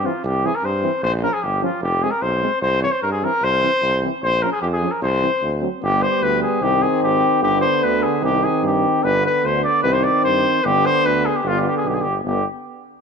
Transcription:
0.03 E3 C4 F4
0.24 C2 G4
0.43 E3 C4 G#4
0.55 A#4
0.63 G2 C5
0.83 E3 C4
1.03 A#1 C5
1.22 F3 C#4 A#4
1.33 G#4
1.43 G1 G4
1.62 F3 C#4 F4
1.81 F1 G4
2.02 G#3 C4 G#4
2.11 A#4
2.22 B1 C5
2.41 G#3 C4
2.62 C2 C5
2.82 E3 C4 C#5
2.92 C5
3.02 G2 A#4
3.12 G#4
3.22 E3 C4 A#4
3.42 C2 C5
3.61 E3 C4
3.82 C2
4.03 E3 C4
4.22 A#1 C5
4.42 F3 C#4 A#4
4.52 G#4
4.62 F2 G4
4.73 G#4
4.81 F3 C#4
4.92 A#4
5.02 C2 C5
5.21 E3 C4
5.43 D2
5.60 F#3 C4
5.81 G1 G3 B3 G4
6.03 C5
6.22 D2 B4
6.43 G#4
6.61 C2 D#3 C4 G4
6.82 G#4
7.02 G#1 G4
7.41 G1 D3 B3 G4
7.61 C5
7.82 D2 B4
8.03 G#4
8.21 C2 D#3 C4 G4
8.44 G#4
8.62 G2 G4
9.03 G1 D3 B3 B4
9.26 B4
9.44 D2 C5
9.64 D5
9.83 C2 D#3 C4 B4
9.93 C5
10.04 D5
10.24 G2 C5
10.63 G1 D3 B3 G4
10.86 C5
11.03 D2 B4
11.26 G#4
11.36 G4
11.43 G1 D3 B3
11.48 F4
11.58 F4 G4
11.67 G4
11.77 G#4
11.84 B1
11.88 G4
11.94 G#4
12.01 G1 G4
12.25 G1 D3 B3 G4

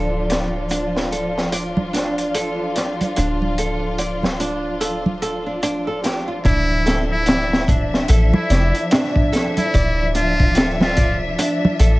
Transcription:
Already playing: D1 F3 D4 F4 A4
0.30 D5, snare, closed hi-hat
0.69 D4, closed hi-hat, shaker
0.96 snare
1.12 A4, closed hi-hat
1.38 snare
1.52 D5, closed hi-hat
1.77 low conga
1.93 D4, snare, closed hi-hat
2.18 closed hi-hat
2.35 A4, closed hi-hat, shaker
2.76 D5, snare, closed hi-hat
3.01 closed hi-hat, low conga
3.16 D1 D4, closed hi-hat
3.42 low conga
3.58 A4, closed hi-hat
3.98 D5, closed hi-hat, shaker
4.23 snare, low conga
4.40 D4, closed hi-hat
4.80 A4, closed hi-hat
5.06 low conga
5.22 A4, closed hi-hat
5.46 D4
5.63 D4, closed hi-hat, shaker
5.87 A4
6.04 G4, snare, closed hi-hat
6.28 F4
6.45 D1 F3 D4 E4 E5, kick, closed hi-hat
6.86 A4, snare, closed hi-hat
7.12 E4
7.26 D5, snare, closed hi-hat, shaker
7.53 snare
7.68 D4, kick, closed hi-hat
7.94 snare
8.08 A1 A4, closed hi-hat
8.34 E4, low conga
8.50 F1 D5, snare, closed hi-hat
8.75 closed hi-hat
8.91 D4, snare, closed hi-hat, shaker
9.16 kick
9.32 A4, snare, closed hi-hat
9.57 E4, closed hi-hat, low conga
9.74 D1 D5, kick, closed hi-hat
10.15 D4 F4, closed hi-hat
10.40 kick
10.55 A4, snare, closed hi-hat, shaker
10.81 F4, snare, low conga
10.97 D5, kick, closed hi-hat
11.38 D4, closed hi-hat
11.65 low conga
11.79 A1 A4, closed hi-hat

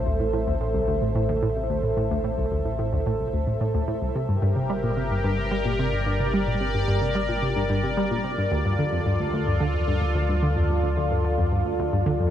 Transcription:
Already playing: A1 A4 C5 E5
0.06 D2
0.20 A2
0.33 A2
0.47 D2
0.61 A2
0.74 C2
0.88 D2
1.02 A2
1.15 A2
1.29 D2
1.43 A2
1.56 C2
1.70 D2
1.83 A2
1.97 A2
2.11 D2
2.24 A2
2.38 C2
2.52 D2
2.65 A2
2.79 A2
2.93 D2
3.06 A2
3.20 C2
3.33 D2
3.47 A2
3.61 A2
3.74 D2
3.88 A2
4.02 C2
4.15 G1 C3 G4
4.27 G2 A#4
4.42 G2
4.56 C3
4.70 G3
4.84 A#2
4.97 C3
5.11 G2
5.24 G2
5.32 D5
5.38 C3
5.51 G3
5.65 A#2
5.79 C3
5.92 G2
6.06 G2
6.20 C3
6.34 G3
6.47 A#2
6.61 C3
6.74 G2
6.88 G2
7.01 C3
7.15 G3
7.29 A#2
7.42 C3
7.56 G2
7.70 G2
7.83 C3
7.97 G3
8.11 A#2
8.24 C3
8.38 G2
8.51 D2 F4
8.65 G2
8.71 A4
8.79 D3
8.92 F2
9.06 G2
9.20 D2
9.33 D2
9.47 G2
9.60 D3
9.74 F2
9.88 G2
10.01 D2
10.15 D2
10.29 G2
10.43 D3
10.56 F2
10.70 G2
10.83 D2
10.97 D2
11.11 G2
11.24 D3
11.38 F2
11.52 G2
11.65 D2
11.79 D2
11.93 G2
12.06 D3
12.20 F2

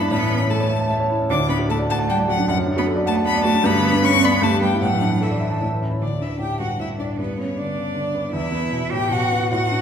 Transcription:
Already playing: G2 D3 E4 B4 D5 E5 B5
0.00 D4
0.10 A2 B3 B5
0.21 E3
0.30 C#4
0.41 E4
0.50 A3 A4 A5
0.60 C#5
0.69 E5
0.80 A5
0.90 E5
1.00 C#5
1.10 E4
1.19 C#4
1.29 D2 D4 D6
1.39 A2
1.49 B3 D4 B5
1.59 F#4
1.69 A3 A4 A5
1.79 D5
1.89 A3 F#5 A5
1.99 A5
2.09 G3 F#5 G5
2.19 D5
2.28 F#3 F#4 F#5
2.38 D4
2.48 F#2 F#3 F#5
2.57 F#3
2.67 D4
2.77 B3 F#4 B5
2.86 A4
2.96 D5
3.06 A3 F#5 A5
3.16 A5
3.26 B3 F#5 B5
3.35 D5
3.44 A3 F#4 A5
3.54 D4
3.64 G2 B3 B5
3.74 D3
3.83 B3
3.93 D4
4.03 C#4 B4 C#6
4.13 D4
4.22 B3 D5 B5
4.32 B5
4.42 G2 A3 A5
4.52 G3
4.61 G3 B3 G5
4.72 E4
4.82 A2 F#3 F#5
4.92 E3
5.01 D4
5.11 E4
5.21 E3 A4 E5
5.31 D5
5.40 E5
5.50 A5
5.60 A2
5.71 E3
5.81 C#4
5.90 E4
6.00 D2 D4 D5
6.20 D4 E4 E5
6.39 A2 G4 G5
6.60 G2 F#4 F#5
6.79 A2 E4 E5
6.98 D4 D5
7.18 G2 B3 B4
7.38 B3 C#4 C#5
7.58 D3 D4 D5
7.77 C#3
7.95 D3
8.14 B3
8.33 E2 E4 E5
8.52 B3
8.72 B2
8.91 A2 G4 G5
9.11 B2 F#4 F#5
9.31 B3
9.51 A2 F#4 F#5
9.71 D4

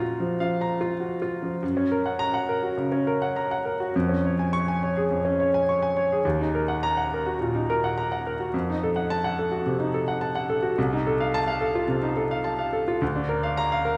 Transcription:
Already playing: A#2 F#4 F5 A#5
0.00 F4
0.20 F3
0.40 F3 F5
0.61 A#5
0.81 F4
1.00 F#4
1.22 F4
1.43 F3
1.63 F#2
1.77 C#4
1.92 A#4
2.06 F#5
2.19 A#5
2.34 F#5
2.49 A#4
2.63 F#4
2.78 C#3
2.92 C#4
3.07 A#4
3.22 F#5
3.36 A#5
3.51 F#5
3.65 A#4
3.80 F#4
3.96 F2
4.09 C#4
4.25 C#5
4.39 G#5
4.53 C#6
4.68 G#5
4.83 C#5
4.97 G#4
5.11 F2
5.25 C#4
5.40 C#5
5.54 G#5
5.69 C#6
5.82 G#5
5.97 C#5
6.12 G#4
6.25 D#2
6.41 D#4
6.55 A#4
6.68 F#5
6.83 A#5
6.97 F#5
7.14 A#4
7.26 F#4
7.41 A#2
7.55 D#4
7.70 A#4
7.84 F#5
7.98 A#5
8.12 F#5
8.27 A#4
8.40 F#4
8.54 F2
8.70 D#4
8.83 A4
8.96 F#5
9.10 A5
9.24 F#5
9.39 A4
9.51 F#4
9.66 C3
9.80 D#4
9.94 A4
10.08 F#5
10.21 A5
10.35 F#5
10.50 A4
10.63 F#4
10.78 C2
10.93 D#4
11.07 A4
11.20 F5
11.34 A5
11.48 F5
11.61 A4
11.75 F4
11.88 C3
12.02 D#4
12.16 A4
12.31 F5
12.44 A5
12.59 F5
12.73 A4
12.88 F4
13.02 D2
13.16 D4
13.29 A#4
13.43 F5
13.57 A#5
13.72 F5
13.85 A#4

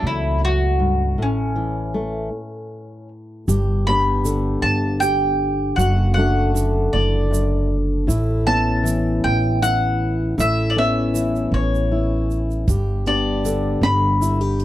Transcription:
Already playing: F#3 A3
0.02 C#2 E2
0.07 E4
0.41 F#2 F#4
0.79 G2
1.17 A1 A2
1.22 C#4
1.56 E3
1.94 A3
3.48 G1 G2 G4, shaker
3.87 B3 D4 G4 B5
4.25 D3, shaker
4.62 G1 A5
5.00 G4 G5, shaker
5.76 F#1 F#2 F#4 F#5, shaker
6.14 A3 F#5
6.19 D4 F#4
6.54 D3, shaker
6.93 F#1 E2 D5
7.31 F#2, shaker
8.07 A1 A2 E4, shaker
8.47 B3 C#4 E4 A5
8.83 E3, shaker
9.24 A1 G5
9.62 E4 F#5, shaker
10.38 A1 A2 E4 E5, shaker
10.70 D5
10.76 B3 C#4 E4 E5
11.14 E3, shaker
11.36 shaker
11.52 A1 C#5
11.75 shaker
11.92 E4
12.31 shaker
12.51 shaker
12.68 G1 G2 G4, kick, closed hi-hat, shaker
13.06 B3 D4 G4 D5, closed hi-hat
13.45 D3, closed hi-hat, shaker
13.81 G1 B5, snare, closed hi-hat
14.21 E4, closed hi-hat, shaker
14.41 G4
14.60 closed hi-hat

